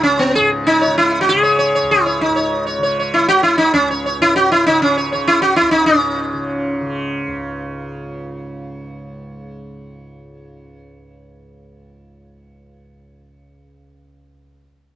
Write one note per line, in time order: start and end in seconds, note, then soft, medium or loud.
0.00 1.81 C#2 medium
0.00 0.39 G#2 medium
0.00 0.86 C#3 medium
0.00 0.19 C#4 loud
0.19 0.35 B3 medium
0.35 2.29 G#2 medium
0.35 0.49 G#4 loud
0.67 0.97 D#4 loud
0.81 0.96 C#5 soft
0.86 1.34 C#3 medium
0.98 1.21 E4 loud
1.21 1.28 F#4 medium
1.29 1.92 G#4 medium
1.34 2.78 C#3 medium
1.43 1.57 C#5 soft
1.59 1.73 C#5 soft
1.75 1.89 C#5 soft
1.82 3.72 C#2 medium
1.91 2.21 E4 medium
2.06 2.20 C#5 soft
2.21 2.64 D#4 medium
2.29 4.19 G#2 medium
2.36 2.50 C#5 soft
2.67 2.81 C#5 soft
2.78 3.24 C#3 medium
2.83 2.97 C#5 soft
2.99 3.13 C#5 soft
3.14 3.28 E4 loud
3.24 4.67 C#3 medium
3.29 3.43 F#4 loud
3.43 3.57 E4 loud
3.58 3.73 D#4 medium
3.72 5.60 C#2 medium
3.72 3.88 C#4 medium
3.91 4.05 C#5 soft
4.06 4.20 C#5 soft
4.19 5.89 G#2 medium
4.19 4.35 E4 loud
4.36 4.51 F#4 loud
4.52 4.66 E4 loud
4.67 5.13 C#3 medium
4.67 4.82 D#4 loud
4.82 4.96 C#4 medium
4.97 5.11 C#5 soft
5.12 6.33 C#3 medium
5.12 5.26 C#5 soft
5.28 5.41 E4 loud
5.42 5.56 F#4 loud
5.56 5.71 E4 loud
5.61 7.27 C#2 medium
5.71 5.86 D#4 loud
5.86 13.04 G#2 medium
5.86 6.73 C#4 medium
6.33 6.81 C#3 medium
6.81 13.96 C#3 medium
7.27 14.42 C#2 medium